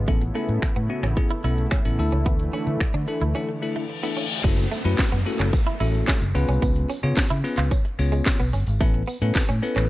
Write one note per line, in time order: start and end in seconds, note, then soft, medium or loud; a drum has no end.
0.00 1.95 C#3 medium
0.00 1.95 B3 medium
0.08 0.28 A1 loud
0.08 0.16 A3 medium
0.08 1.97 A3 medium
0.08 0.22 B3 medium
0.08 0.22 C#4 medium
0.08 0.22 E4 medium
0.08 4.40 E4 medium
0.08 0.22 A4 medium
0.08 kick loud
0.08 closed hi-hat medium
0.21 muted clean electric guitar stroke soft
0.21 closed hi-hat medium
0.35 0.44 A3 medium
0.35 0.63 B3 medium
0.35 0.63 C#4 medium
0.35 0.63 E4 medium
0.35 0.63 A4 medium
0.49 0.59 A2 loud
0.49 closed hi-hat soft
0.62 finger snap loud
0.62 muted fingered electric bass stroke soft
0.62 kick loud
0.62 closed hi-hat medium
0.76 0.86 A2 medium
0.76 0.84 B3 medium
0.76 closed hi-hat medium
0.89 1.04 B3 medium
0.89 1.04 C#4 medium
0.89 1.04 E4 medium
0.89 1.04 F#4 medium
0.89 muted clean electric guitar stroke soft
1.03 1.14 A1 medium
1.03 1.12 C#4 medium
1.03 finger snap medium
1.03 closed hi-hat soft
1.17 1.31 B3 medium
1.17 1.31 C#4 medium
1.17 1.31 E4 medium
1.17 1.31 G#4 medium
1.17 muted clean electric guitar stroke soft
1.17 kick loud
1.17 closed hi-hat medium
1.31 1.39 E4 medium
1.31 closed hi-hat soft
1.44 1.65 B1 medium
1.44 1.65 B3 medium
1.44 1.65 C#4 medium
1.44 1.53 E4 medium
1.44 1.65 E4 medium
1.44 1.65 A4 medium
1.58 closed hi-hat soft
1.71 1.80 C#4 medium
1.71 finger snap loud
1.71 kick loud
1.71 closed hi-hat medium
1.85 1.95 A1 medium
1.85 1.99 B3 medium
1.85 1.99 C#4 medium
1.85 1.98 E4 medium
1.85 1.98 A4 medium
1.85 closed hi-hat medium
1.99 2.09 D2 loud
1.99 4.42 D3 medium
1.99 4.42 E3 medium
1.99 2.42 A3 medium
1.99 4.42 A3 medium
1.99 2.43 D4 medium
1.99 2.43 E4 medium
1.99 2.43 A4 loud
1.99 muted clean electric guitar stroke soft
2.12 2.23 C#2 medium
2.12 2.21 C#4 medium
2.12 closed hi-hat medium
2.26 2.47 D2 loud
2.26 2.34 B3 medium
2.26 kick loud
2.26 closed hi-hat medium
2.39 closed hi-hat medium
2.53 2.81 A3 medium
2.53 2.62 C#4 medium
2.53 2.81 D4 medium
2.53 2.81 E4 medium
2.53 2.81 A4 medium
2.67 2.77 D3 loud
2.67 muted clean electric guitar stroke soft
2.67 closed hi-hat soft
2.80 finger snap loud
2.80 muted fingered electric bass stroke soft
2.80 kick loud
2.80 closed hi-hat medium
2.94 3.04 D3 medium
2.94 3.02 D4 medium
2.94 closed hi-hat medium
3.08 3.22 A3 medium
3.08 3.22 D4 medium
3.08 3.22 E4 medium
3.08 3.22 A4 medium
3.08 muted clean electric guitar stroke soft
3.21 3.32 D2 medium
3.21 3.30 E4 medium
3.21 closed hi-hat soft
3.35 3.49 A3 medium
3.35 3.43 C#4 medium
3.35 3.49 D4 medium
3.35 3.49 E4 medium
3.35 3.49 A4 loud
3.35 reverse cymbal medium
3.49 muted clean electric guitar stroke soft
3.62 3.83 A3 medium
3.62 3.83 D4 medium
3.62 3.83 E4 medium
3.62 3.83 A4 medium
3.76 3.84 A3 medium
3.90 muted clean electric guitar stroke soft
4.03 4.24 A3 medium
4.03 4.11 B3 medium
4.03 4.24 D4 medium
4.03 4.24 E4 medium
4.03 4.24 A4 loud
4.17 4.25 C#4 medium
4.44 4.65 F#1 loud
4.44 4.52 F#3 medium
4.44 4.65 A3 medium
4.44 4.65 C#4 medium
4.44 4.65 E4 medium
4.44 4.65 F#4 medium
4.44 4.65 A4 medium
4.44 kick loud
4.44 closed hi-hat medium
4.44 crash loud
4.44 tambourine soft
4.44 downlifter medium
4.44 shaker medium
4.58 muted clean electric guitar stroke soft
4.58 closed hi-hat medium
4.58 shaker medium
4.71 4.80 A3 medium
4.71 open hi-hat medium
4.71 tambourine medium
4.71 shaker medium
4.85 4.95 F#2 loud
4.85 5.06 A3 medium
4.85 5.06 C#4 medium
4.85 5.06 E4 medium
4.85 5.06 F#4 medium
4.85 5.06 B4 loud
4.85 closed hi-hat medium
4.85 shaker medium
4.99 muted fingered electric bass stroke soft
4.99 kick loud
4.99 snare medium
4.99 clap loud
4.99 closed hi-hat medium
4.99 tambourine medium
4.99 shaker medium
5.12 5.23 F#2 loud
5.12 5.21 B3 medium
5.12 closed hi-hat medium
5.12 shaker medium
5.26 5.54 A3 medium
5.26 5.54 C#4 medium
5.26 5.54 E4 medium
5.26 5.54 F#4 medium
5.26 5.54 A4 medium
5.26 muted clean electric guitar stroke soft
5.26 open hi-hat medium
5.26 tambourine soft
5.26 shaker medium
5.39 5.50 F#1 loud
5.39 5.48 C#4 medium
5.39 clap medium
5.39 closed hi-hat medium
5.39 tambourine soft
5.39 shaker medium
5.53 muted clean electric guitar stroke soft
5.53 kick loud
5.53 closed hi-hat medium
5.53 tambourine medium
5.53 shaker medium
5.67 5.75 E4 medium
5.67 closed hi-hat soft
5.67 shaker soft
5.80 6.01 A1 loud
5.80 6.22 A3 medium
5.80 6.22 C#4 medium
5.80 5.89 E4 medium
5.80 6.22 E4 medium
5.80 6.22 F#4 medium
5.80 6.22 A4 medium
5.80 open hi-hat medium
5.80 tambourine medium
5.80 shaker soft
5.94 closed hi-hat medium
5.94 tambourine soft
5.94 shaker medium
6.08 6.16 C#4 medium
6.08 kick loud
6.08 snare medium
6.08 clap loud
6.08 closed hi-hat medium
6.08 tambourine medium
6.08 shaker medium
6.21 6.32 F#1 medium
6.21 closed hi-hat medium
6.21 tambourine soft
6.21 shaker medium
6.35 6.45 C#2 loud
6.35 6.89 B3 loud
6.35 6.90 C#4 medium
6.35 6.90 F4 medium
6.35 6.90 G#4 medium
6.35 6.90 B4 loud
6.35 muted clean electric guitar stroke soft
6.35 open hi-hat medium
6.35 tambourine medium
6.35 shaker medium
6.48 6.59 C2 loud
6.48 6.57 C#4 medium
6.48 closed hi-hat medium
6.48 tambourine soft
6.48 shaker medium
6.62 6.83 C#2 loud
6.62 6.71 B3 medium
6.62 kick loud
6.62 closed hi-hat medium
6.62 tambourine soft
6.62 shaker medium
6.76 closed hi-hat medium
6.76 shaker medium
6.90 6.98 C#4 medium
6.90 open hi-hat medium
6.90 tambourine medium
6.90 shaker medium
7.03 7.14 C#3 loud
7.03 7.24 B3 medium
7.03 7.24 C#4 medium
7.03 7.24 F4 medium
7.03 7.24 G#4 medium
7.03 7.24 C#5 loud
7.03 muted clean electric guitar stroke soft
7.03 closed hi-hat medium
7.03 shaker medium
7.17 muted fingered electric bass stroke soft
7.17 kick loud
7.17 snare loud
7.17 clap loud
7.17 closed hi-hat medium
7.17 tambourine medium
7.17 shaker medium
7.30 7.41 C#3 loud
7.30 7.39 E4 medium
7.30 closed hi-hat medium
7.30 shaker medium
7.44 7.72 B3 medium
7.44 7.72 C#4 medium
7.44 7.72 F4 medium
7.44 7.72 G#4 medium
7.44 7.72 B4 medium
7.44 muted clean electric guitar stroke soft
7.44 open hi-hat medium
7.44 tambourine medium
7.44 shaker medium
7.58 7.68 C#2 loud
7.58 7.66 F4 medium
7.58 clap medium
7.58 closed hi-hat medium
7.58 tambourine soft
7.58 shaker medium
7.71 7.80 C#4 medium
7.71 kick loud
7.71 closed hi-hat medium
7.71 tambourine soft
7.71 shaker medium
7.85 muted clean electric guitar stroke medium
7.85 closed hi-hat soft
7.85 shaker soft
7.99 8.20 C#2 medium
7.99 8.40 B3 medium
7.99 8.41 C#4 medium
7.99 8.41 F4 medium
7.99 8.41 G#4 medium
7.99 8.41 C#5 loud
7.99 open hi-hat medium
7.99 tambourine medium
7.99 shaker medium
8.12 8.20 G#3 medium
8.12 closed hi-hat medium
8.12 tambourine soft
8.12 shaker medium
8.26 muted clean electric guitar stroke soft
8.26 kick loud
8.26 snare medium
8.26 clap loud
8.26 closed hi-hat medium
8.26 tambourine medium
8.26 shaker medium
8.40 8.50 B1 medium
8.40 8.48 B3 medium
8.40 closed hi-hat medium
8.40 tambourine soft
8.40 shaker medium
8.53 8.64 G1 medium
8.53 8.62 C#4 medium
8.53 open hi-hat medium
8.53 tambourine medium
8.53 shaker medium
8.67 8.77 G#1 loud
8.67 closed hi-hat medium
8.67 tambourine soft
8.67 shaker medium
8.80 8.89 A3 medium
8.80 9.01 B3 medium
8.80 9.02 C#4 medium
8.80 9.02 E4 medium
8.80 9.02 A4 medium
8.80 9.02 B4 loud
8.80 kick loud
8.80 closed hi-hat medium
8.80 tambourine soft
8.80 shaker medium
8.94 muted clean electric guitar stroke soft
8.94 closed hi-hat medium
8.94 shaker medium
9.08 9.16 B3 medium
9.08 open hi-hat medium
9.08 tambourine medium
9.08 shaker medium
9.22 9.32 A2 loud
9.22 9.42 B3 medium
9.22 9.42 C#4 medium
9.22 9.43 E4 medium
9.22 9.43 A4 medium
9.22 9.43 B4 loud
9.22 closed hi-hat medium
9.22 shaker medium
9.35 muted fingered electric bass stroke soft
9.35 kick loud
9.35 snare medium
9.35 clap loud
9.35 closed hi-hat medium
9.35 tambourine medium
9.35 shaker medium
9.49 9.59 A2 loud
9.49 9.57 C#4 medium
9.49 closed hi-hat medium
9.49 shaker medium
9.62 9.89 B3 medium
9.62 9.89 C#4 medium
9.62 9.89 E4 medium
9.62 9.89 A4 medium
9.62 9.89 B4 loud
9.62 muted clean electric guitar stroke soft
9.62 open hi-hat medium
9.62 tambourine soft
9.62 shaker medium
9.76 9.86 A1 medium
9.76 9.84 C#4 medium
9.76 clap medium
9.76 closed hi-hat medium
9.76 shaker medium